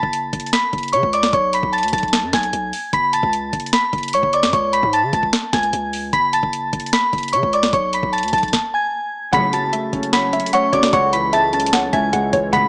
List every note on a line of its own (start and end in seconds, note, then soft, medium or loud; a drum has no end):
0.00 0.32 F#1 loud
0.00 0.49 A5 medium
0.00 0.50 A6 medium
0.00 kick medium
0.13 closed hi-hat medium
0.33 0.52 F#1 loud
0.33 kick medium
0.33 closed hi-hat medium
0.40 closed hi-hat medium
0.46 closed hi-hat soft
0.53 0.91 B5 medium
0.53 0.91 B6 medium
0.53 snare loud
0.53 closed hi-hat medium
0.73 0.95 F#1 loud
0.73 kick medium
0.73 closed hi-hat soft
0.78 closed hi-hat medium
0.83 closed hi-hat medium
0.88 closed hi-hat medium
0.93 1.03 C#3 loud
0.93 1.10 C#5 medium
0.93 1.10 C#6 medium
0.93 closed hi-hat medium
1.03 1.32 C#2 loud
1.03 kick medium
1.13 1.31 D5 medium
1.13 1.30 D6 medium
1.13 closed hi-hat medium
1.23 snare loud
1.33 1.62 B1 loud
1.33 1.50 C#5 medium
1.33 1.50 C#6 medium
1.33 kick loud
1.33 closed hi-hat medium
1.53 1.70 B5 medium
1.53 1.71 B6 medium
1.53 closed hi-hat medium
1.63 1.85 B1 loud
1.63 kick loud
1.73 1.90 A5 medium
1.73 1.90 A6 medium
1.73 closed hi-hat soft
1.78 closed hi-hat medium
1.83 1.93 D2 medium
1.83 closed hi-hat medium
1.88 closed hi-hat medium
1.93 2.25 B1 loud
1.93 2.31 A5 medium
1.93 2.31 A6 medium
1.93 kick loud
1.93 closed hi-hat medium
1.98 closed hi-hat medium
2.03 kick loud
2.03 closed hi-hat medium
2.08 closed hi-hat soft
2.13 snare loud
2.13 closed hi-hat medium
2.23 2.33 F#2 loud
2.33 2.52 B1 loud
2.33 2.90 G#5 medium
2.33 2.90 G#6 medium
2.33 kick medium
2.33 snare loud
2.33 closed hi-hat medium
2.43 closed hi-hat medium
2.53 2.72 B1 loud
2.53 closed hi-hat medium
2.73 open hi-hat medium
2.93 3.22 F#1 loud
2.93 3.10 B5 loud
2.93 3.10 B6 medium
2.93 kick loud
2.93 closed hi-hat medium
3.13 3.70 A5 medium
3.13 3.70 A6 medium
3.13 closed hi-hat medium
3.23 3.52 C#2 loud
3.23 kick medium
3.33 closed hi-hat medium
3.53 3.72 F#1 loud
3.53 kick medium
3.53 closed hi-hat medium
3.60 closed hi-hat medium
3.66 closed hi-hat soft
3.73 4.11 B5 medium
3.73 4.11 B6 medium
3.73 snare loud
3.73 closed hi-hat medium
3.93 4.15 F#1 loud
3.93 kick medium
3.93 closed hi-hat soft
3.98 closed hi-hat medium
4.03 closed hi-hat medium
4.08 closed hi-hat medium
4.13 4.23 C#2 loud
4.13 4.31 C#5 medium
4.13 4.30 C#6 medium
4.13 closed hi-hat medium
4.23 4.45 F#1 loud
4.23 kick medium
4.33 4.51 D5 medium
4.33 4.50 D6 medium
4.33 closed hi-hat medium
4.43 4.53 F#2 medium
4.43 snare loud
4.53 4.82 C#2 loud
4.53 4.70 C#5 medium
4.53 4.70 C#6 medium
4.53 kick loud
4.53 closed hi-hat medium
4.73 4.90 B5 medium
4.73 4.90 B6 medium
4.73 closed hi-hat medium
4.83 5.05 G#2 loud
4.83 kick medium
4.93 5.10 A5 medium
4.93 5.10 A6 medium
4.93 closed hi-hat medium
5.03 5.13 C#3 loud
5.13 5.32 C#2 loud
5.13 5.51 A5 medium
5.13 5.51 A6 medium
5.13 kick medium
5.13 closed hi-hat medium
5.23 kick medium
5.33 snare loud
5.33 closed hi-hat medium
5.53 5.72 C#2 loud
5.53 6.09 G#5 medium
5.53 6.10 G#6 medium
5.53 kick medium
5.53 snare loud
5.53 closed hi-hat medium
5.63 closed hi-hat medium
5.73 6.11 C#2 loud
5.73 closed hi-hat medium
5.93 open hi-hat medium
6.13 6.42 F#1 loud
6.13 6.30 B5 loud
6.13 6.30 B6 medium
6.13 kick loud
6.13 closed hi-hat medium
6.33 6.89 A5 medium
6.33 6.90 A6 medium
6.33 closed hi-hat medium
6.43 6.72 F#1 loud
6.43 kick medium
6.53 closed hi-hat medium
6.73 6.92 F#1 loud
6.73 kick loud
6.73 closed hi-hat medium
6.80 closed hi-hat medium
6.86 closed hi-hat soft
6.93 7.31 B5 medium
6.93 7.31 B6 medium
6.93 snare loud
6.93 closed hi-hat medium
7.13 7.35 F#1 loud
7.13 kick medium
7.13 closed hi-hat soft
7.18 closed hi-hat medium
7.23 closed hi-hat medium
7.28 closed hi-hat medium
7.33 7.43 C#3 loud
7.33 7.50 C#5 medium
7.33 7.50 C#6 medium
7.33 closed hi-hat medium
7.43 7.72 C#2 loud
7.43 kick medium
7.53 7.71 D5 medium
7.53 7.70 D6 medium
7.53 closed hi-hat medium
7.63 snare loud
7.73 8.02 B1 loud
7.73 7.90 C#5 medium
7.73 7.90 C#6 loud
7.73 kick loud
7.73 closed hi-hat medium
7.93 8.10 B5 medium
7.93 8.11 B6 medium
7.93 closed hi-hat medium
8.03 8.25 B1 loud
8.03 kick medium
8.13 8.30 A5 medium
8.13 8.30 A6 medium
8.13 closed hi-hat soft
8.18 closed hi-hat medium
8.23 8.33 D2 loud
8.23 closed hi-hat medium
8.28 closed hi-hat medium
8.33 8.52 B1 loud
8.33 8.71 A5 medium
8.33 8.71 A6 medium
8.33 kick loud
8.33 closed hi-hat medium
8.38 closed hi-hat medium
8.43 kick medium
8.43 closed hi-hat medium
8.48 closed hi-hat soft
8.53 kick loud
8.53 snare medium
8.74 9.30 G#5 medium
8.74 9.30 G#6 medium
9.33 9.71 F#1 loud
9.33 9.62 C#2 loud
9.33 9.62 A2 loud
9.33 10.33 C#3 loud
9.33 9.62 F#3 loud
9.33 10.92 F#3 medium
9.33 10.92 C#4 medium
9.33 10.92 A4 medium
9.33 9.70 F#5 loud
9.33 9.50 B5 loud
9.33 9.51 B6 medium
9.33 kick loud
9.33 closed hi-hat medium
9.53 10.53 F#3 medium
9.53 10.10 A5 medium
9.53 10.10 A6 medium
9.53 closed hi-hat medium
9.73 10.51 A3 medium
9.73 10.11 E5 medium
9.73 closed hi-hat medium
9.93 10.41 F#1 loud
9.93 10.31 C#4 medium
9.93 kick loud
9.93 closed hi-hat soft
10.03 closed hi-hat medium
10.13 10.93 C#5 loud
10.13 10.32 F#5 medium
10.13 10.51 B5 medium
10.13 10.51 B6 medium
10.13 snare loud
10.13 closed hi-hat medium
10.33 10.93 C#4 medium
10.33 10.52 E5 medium
10.33 closed hi-hat medium
10.40 closed hi-hat medium
10.46 closed hi-hat medium
10.53 10.93 A3 medium
10.53 10.71 C#5 medium
10.53 10.72 F#5 medium
10.53 10.70 C#6 medium
10.53 closed hi-hat medium
10.73 10.92 F#1 loud
10.73 10.93 F#3 medium
10.73 10.92 C#5 medium
10.73 10.91 D5 medium
10.73 10.90 D6 medium
10.73 kick medium
10.73 closed hi-hat medium
10.83 snare loud
10.92 11.89 C#2 loud
10.92 11.93 C#3 medium
10.92 12.51 C#3 medium
10.92 12.52 G#3 medium
10.92 12.51 E4 medium
10.92 11.10 C#5 medium
10.92 11.31 F#5 loud
10.92 11.10 C#6 medium
10.92 kick loud
10.92 closed hi-hat medium
11.13 12.13 E3 medium
11.13 11.30 B5 medium
11.13 11.30 B6 medium
11.13 closed hi-hat medium
11.33 12.11 G#3 medium
11.33 11.71 E5 medium
11.33 11.50 A5 medium
11.33 11.50 A6 medium
11.33 closed hi-hat medium
11.53 11.92 C#4 medium
11.53 11.91 A5 medium
11.53 11.91 A6 medium
11.53 closed hi-hat soft
11.60 closed hi-hat medium
11.66 closed hi-hat medium
11.73 12.53 C#5 medium
11.73 11.92 F#5 medium
11.73 snare loud
11.73 closed hi-hat medium
11.93 12.12 C#2 loud
11.93 12.53 C#4 medium
11.93 12.12 E5 medium
11.93 12.49 G#5 medium
11.93 12.50 G#6 medium
11.93 kick medium
11.93 closed hi-hat medium
12.13 12.32 C#2 loud
12.13 12.53 G#3 medium
12.13 12.32 F#5 medium
12.13 closed hi-hat medium
12.33 12.52 C#2 loud
12.33 12.53 E3 medium
12.33 12.52 C#5 medium
12.33 kick medium
12.33 closed hi-hat medium
12.53 12.68 F#1 loud
12.53 12.68 C#2 loud
12.53 12.68 A2 loud
12.53 12.68 C#3 medium
12.53 12.68 F#3 loud
12.53 12.68 F#3 medium
12.53 12.68 C#4 medium
12.53 12.68 A4 medium
12.53 12.68 F#5 loud
12.53 12.68 B5 loud
12.53 12.68 B6 medium
12.53 kick loud
12.53 closed hi-hat medium